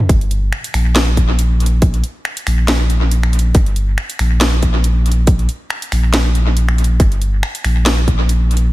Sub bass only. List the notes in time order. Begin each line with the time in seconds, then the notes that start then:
0.09 G1
0.74 A#1
2.47 A#1
3.55 G1
4.20 A#1
5.92 A#1
7.00 G1
7.65 A#1